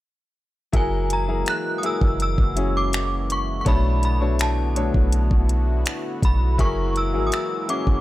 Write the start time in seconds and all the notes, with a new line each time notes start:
0.72 F#1 E3 F#3 G#3 A#3 E4 F#4 G#4 A#4 G#5, kick, closed hi-hat
1.10 A#5, closed hi-hat
1.27 F#3 E4 G#4 A#4
1.46 F#6, finger snap, closed hi-hat
1.78 D#6
1.82 F#3 E4 G#4 A#4 E6, closed hi-hat
2.01 F#1, kick
2.20 E6, closed hi-hat
2.38 F#1, kick
2.56 F#3 C#4 E4 G#4, closed hi-hat
2.77 D6
2.93 finger snap, closed hi-hat
3.30 C#6, closed hi-hat
3.61 B2 C#6
3.66 B1 D3 A3 B3 D4 C#5 B5, kick, closed hi-hat
4.03 B5, closed hi-hat
4.20 B2 A3 D4 C#5
4.39 A5, finger snap, closed hi-hat
4.75 B2 A3 D4 C#5, closed hi-hat
4.94 B1, kick
5.12 closed hi-hat
5.31 B1, kick
5.49 closed hi-hat
5.86 finger snap, closed hi-hat
6.23 B1 B5, kick, closed hi-hat
6.58 F#1 E3 F#3 G#3 A#3 E4 G#4 A#4 C#6, kick, closed hi-hat
6.96 E6, closed hi-hat
7.13 G#1 F#3 E4 G#4 A#4
7.27 D#6
7.32 E6, finger snap, closed hi-hat
7.68 F#3 C#4 E4 G#4 D6, closed hi-hat
7.87 F#1, kick